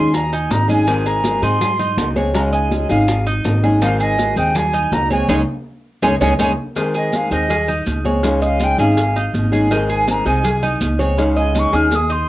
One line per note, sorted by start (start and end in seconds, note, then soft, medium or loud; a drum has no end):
0.00 0.47 D#2 loud
0.00 0.13 G#3 medium
0.00 0.13 C#4 medium
0.00 0.13 D#4 medium
0.00 0.13 G#4 medium
0.00 0.31 G#4 medium
0.00 0.16 C6 loud
0.14 0.34 A#5 medium
0.14 muted nylon-string guitar stroke medium
0.14 high bongo medium
0.14 high conga soft
0.14 maracas medium
0.32 0.68 D#4 medium
0.32 0.53 G#5 medium
0.32 high bongo soft
0.32 high conga soft
0.32 maracas soft
0.50 1.36 G#1 medium
0.50 0.69 A#5 loud
0.50 high bongo medium
0.50 low bongo medium
0.50 high conga medium
0.50 maracas medium
0.68 0.87 G#3 medium
0.68 0.87 C#4 medium
0.68 0.86 D#4 medium
0.68 0.86 G#4 medium
0.68 0.87 G#4 medium
0.68 1.08 G#5 loud
0.68 high bongo soft
0.68 high conga medium
0.68 maracas soft
0.87 1.23 D#3 medium
0.87 1.23 G#3 medium
0.87 1.24 C4 medium
0.87 1.05 D#4 medium
0.87 1.24 G#4 medium
0.87 high bongo medium
0.87 high conga soft
0.87 maracas medium
1.06 1.42 G#4 medium
1.06 1.44 A#5 loud
1.06 high bongo soft
1.06 high conga soft
1.06 maracas soft
1.24 1.42 D#3 medium
1.24 1.42 G#3 medium
1.24 1.42 C4 medium
1.24 1.41 G#4 medium
1.24 high bongo medium
1.24 high conga medium
1.24 maracas medium
1.42 1.94 G#2 medium
1.42 1.60 G#3 medium
1.42 1.60 C4 medium
1.42 1.60 D#4 medium
1.42 1.60 G#4 medium
1.42 2.08 C6 loud
1.42 high bongo soft
1.42 high conga soft
1.42 maracas soft
1.61 1.79 G#4 medium
1.61 muted nylon-string guitar stroke medium
1.61 high bongo medium
1.61 high conga soft
1.61 low conga medium
1.61 maracas medium
1.79 2.15 D#4 medium
1.79 high bongo soft
1.79 high conga soft
1.79 low conga medium
1.79 maracas soft
1.97 2.84 C#2 medium
1.97 high bongo medium
1.97 low bongo medium
1.97 high conga medium
1.97 maracas medium
2.16 2.33 G#3 medium
2.16 2.34 C4 medium
2.16 2.34 G#4 medium
2.16 2.52 C#5 medium
2.16 high conga medium
2.16 maracas soft
2.34 2.70 C#3 medium
2.34 2.70 G#3 medium
2.34 2.70 C#4 medium
2.34 2.71 D#4 medium
2.34 2.71 G#4 medium
2.34 2.41 A#5 medium
2.34 high bongo medium
2.34 maracas medium
2.52 2.88 D#5 medium
2.52 2.87 G#5 medium
2.52 high conga soft
2.52 maracas soft
2.71 2.89 G#3 medium
2.71 2.89 C#4 medium
2.71 2.89 D#4 medium
2.71 2.88 G#4 medium
2.71 high bongo medium
2.71 high conga medium
2.71 maracas medium
2.89 3.41 G#1 medium
2.89 3.07 G#3 medium
2.89 3.07 C#4 medium
2.89 3.07 D#4 medium
2.89 3.07 G#4 medium
2.89 3.25 G#4 medium
2.89 3.24 F5 medium
2.89 high bongo soft
2.89 high conga soft
2.89 maracas soft
3.08 muted nylon-string guitar stroke medium
3.08 high bongo medium
3.08 high conga soft
3.08 maracas medium
3.26 3.62 D#4 medium
3.26 high bongo soft
3.26 high conga soft
3.26 maracas soft
3.45 4.31 G#1 medium
3.45 high bongo medium
3.45 low bongo medium
3.45 high conga medium
3.45 maracas medium
3.63 3.80 G#3 medium
3.63 3.81 C#4 medium
3.63 3.81 D#4 medium
3.63 3.81 G#4 medium
3.63 high bongo soft
3.63 high conga medium
3.63 maracas soft
3.81 4.17 D#3 medium
3.81 4.17 G#3 medium
3.81 4.18 C4 medium
3.81 3.99 D#4 medium
3.81 4.18 G#4 medium
3.81 3.99 F5 medium
3.81 high bongo medium
3.81 high conga soft
3.81 maracas medium
4.00 4.36 G#4 medium
4.00 4.35 D#5 medium
4.00 high bongo soft
4.00 high conga soft
4.00 maracas soft
4.18 4.36 D#3 medium
4.18 4.36 G#3 medium
4.18 4.36 C4 medium
4.18 4.35 G#4 medium
4.18 high bongo medium
4.18 high conga medium
4.18 maracas medium
4.36 4.88 D#2 loud
4.36 4.54 G#3 medium
4.36 4.55 C4 medium
4.36 4.55 D#4 medium
4.36 4.54 G#4 medium
4.36 4.58 G5 medium
4.36 high bongo soft
4.36 high conga soft
4.36 maracas soft
4.55 4.73 G#4 medium
4.55 4.95 G#5 loud
4.55 muted nylon-string guitar stroke medium
4.55 high bongo medium
4.55 high conga soft
4.55 low conga medium
4.55 maracas medium
4.73 5.09 D#4 medium
4.73 high bongo soft
4.73 high conga soft
4.73 low conga medium
4.73 maracas soft
4.92 5.26 C#2 medium
4.92 5.11 A#5 loud
4.92 high bongo medium
4.92 low bongo medium
4.92 high conga medium
4.92 maracas medium
5.10 5.28 G#3 medium
5.10 5.29 C4 medium
5.10 5.28 G#4 medium
5.10 5.27 C#5 medium
5.10 5.28 G#5 medium
5.10 high conga medium
5.10 maracas soft
5.28 5.42 C#2 loud
5.28 5.41 G#3 loud
5.28 5.41 C#4 loud
5.28 5.41 D#4 medium
5.28 5.41 D#4 loud
5.28 5.41 G#4 medium
5.28 5.41 C#5 medium
5.28 5.41 G#5 medium
5.28 low bongo loud
5.28 high conga medium
5.28 maracas medium
6.02 6.16 C#2 loud
6.02 6.14 G#3 loud
6.02 6.14 C#4 loud
6.02 6.14 D#4 loud
6.02 6.14 G#4 loud
6.02 6.14 C#5 medium
6.02 6.15 G#5 loud
6.02 low bongo loud
6.02 high conga loud
6.02 maracas loud
6.21 6.35 C#2 medium
6.21 6.33 G#3 medium
6.21 6.33 C#4 loud
6.21 6.33 D#4 medium
6.21 6.33 D#4 loud
6.21 6.33 G#4 medium
6.21 6.33 C#5 loud
6.21 6.33 G#5 loud
6.21 low bongo loud
6.21 high conga medium
6.21 maracas loud
6.39 6.53 C#2 medium
6.39 6.51 G#3 loud
6.39 6.51 C#4 medium
6.39 6.51 D#4 medium
6.39 6.51 D#4 loud
6.39 6.51 G#4 loud
6.39 6.51 C#5 medium
6.39 6.52 G#5 loud
6.39 low bongo loud
6.39 high conga loud
6.39 maracas loud
6.76 7.11 D#3 medium
6.76 7.12 G#3 medium
6.76 7.13 C4 medium
6.76 6.94 D#4 medium
6.76 7.13 G#4 medium
6.76 cowbell loud
6.76 high conga soft
6.76 maracas medium
6.94 7.30 G#4 medium
6.94 7.17 D#5 medium
6.94 high conga soft
6.94 maracas soft
7.13 7.30 D#3 medium
7.13 7.31 G#3 medium
7.13 7.31 C4 medium
7.13 7.30 G#4 medium
7.13 7.32 F5 loud
7.13 cowbell medium
7.13 high conga medium
7.13 maracas medium
7.31 7.82 D#2 medium
7.31 7.49 G#3 medium
7.31 7.49 C4 medium
7.31 7.49 D#4 medium
7.31 7.49 G#4 medium
7.31 7.83 D#5 medium
7.31 cowbell medium
7.31 high conga soft
7.31 maracas soft
7.50 7.68 G#4 medium
7.50 muted nylon-string guitar stroke medium
7.50 cowbell loud
7.50 high conga soft
7.50 low conga medium
7.50 maracas medium
7.68 8.04 D#4 medium
7.68 high conga soft
7.68 low conga medium
7.68 maracas soft
7.86 8.73 C#2 medium
7.86 cowbell medium
7.86 high conga medium
7.86 maracas medium
8.05 8.22 G#3 medium
8.05 8.23 C4 medium
8.05 8.23 G#4 medium
8.05 8.41 C#5 medium
8.05 high conga medium
8.05 maracas soft
8.23 8.59 C#3 medium
8.23 8.59 G#3 medium
8.23 8.59 C#4 medium
8.23 8.60 D#4 medium
8.23 8.60 G#4 medium
8.23 cowbell loud
8.23 maracas medium
8.42 8.78 D#5 medium
8.42 8.65 F5 medium
8.42 high conga soft
8.42 maracas soft
8.60 8.78 G#3 medium
8.60 8.78 C#4 medium
8.60 8.78 D#4 medium
8.60 8.77 G#4 medium
8.60 8.79 G5 loud
8.60 cowbell medium
8.60 high conga medium
8.60 maracas medium
8.78 9.30 G#1 medium
8.78 8.96 G#3 medium
8.78 8.96 C#4 medium
8.78 8.96 D#4 medium
8.78 8.96 G#4 medium
8.78 9.15 G#4 medium
8.78 9.31 F5 medium
8.78 cowbell medium
8.78 high conga soft
8.78 maracas soft
8.97 muted nylon-string guitar stroke medium
8.97 cowbell loud
8.97 high conga soft
8.97 maracas medium
9.16 9.51 D#4 medium
9.16 high conga soft
9.16 maracas soft
9.33 10.20 G#1 medium
9.33 cowbell medium
9.33 high conga medium
9.33 maracas medium
9.52 9.70 G#3 medium
9.52 9.70 C#4 medium
9.52 9.70 D#4 medium
9.52 9.70 G#4 medium
9.52 high conga medium
9.52 maracas soft
9.70 10.06 D#3 medium
9.70 10.06 G#3 medium
9.70 10.07 C4 medium
9.70 9.89 D#4 medium
9.70 10.07 G#4 medium
9.70 cowbell loud
9.70 high conga soft
9.70 maracas medium
9.89 10.25 G#4 medium
9.89 10.12 G#5 medium
9.89 high conga soft
9.89 maracas soft
10.07 10.25 D#3 medium
10.07 10.25 G#3 medium
10.07 10.25 C4 medium
10.07 10.24 G#4 medium
10.07 10.28 A#5 loud
10.07 cowbell medium
10.07 high conga medium
10.07 maracas medium
10.26 10.77 C2 medium
10.26 10.44 G#3 medium
10.26 10.44 C4 medium
10.26 10.44 D#4 medium
10.26 10.43 G#4 medium
10.26 10.78 G#5 medium
10.26 cowbell medium
10.26 high conga soft
10.26 maracas soft
10.44 10.62 G#4 medium
10.44 muted nylon-string guitar stroke medium
10.44 cowbell loud
10.44 high conga soft
10.44 low conga medium
10.44 maracas medium
10.63 10.98 D#4 medium
10.63 high conga soft
10.63 low conga medium
10.63 maracas soft
10.81 11.67 C#2 medium
10.81 cowbell medium
10.81 high conga medium
10.81 maracas medium
10.99 11.17 G#3 medium
10.99 11.17 C4 medium
10.99 11.17 G#4 medium
10.99 11.35 C#5 medium
10.99 high conga medium
10.99 maracas soft
11.17 11.54 C#3 medium
11.17 11.53 G#3 medium
11.17 11.54 C#4 medium
11.17 11.54 D#4 medium
11.17 11.55 G#4 medium
11.17 cowbell loud
11.17 maracas medium
11.36 11.72 D#5 medium
11.36 11.60 G#5 medium
11.36 high conga soft
11.36 maracas soft
11.54 11.72 G#3 medium
11.54 11.72 C#4 medium
11.54 11.72 D#4 medium
11.54 11.71 G#4 medium
11.54 11.76 C#6 medium
11.54 cowbell medium
11.54 high conga medium
11.54 maracas medium
11.72 12.24 D#2 medium
11.72 11.91 G#3 medium
11.72 11.91 C#4 medium
11.72 11.91 D#4 medium
11.72 11.90 G#4 medium
11.72 12.09 G#4 medium
11.72 11.96 F6 loud
11.72 cowbell medium
11.72 high conga medium
11.72 maracas soft
11.91 12.13 D#6 loud
11.91 muted nylon-string guitar stroke medium
11.91 cowbell loud
11.91 high conga medium
11.91 maracas medium
12.10 12.29 D#4 medium
12.10 12.29 C6 medium
12.10 maracas soft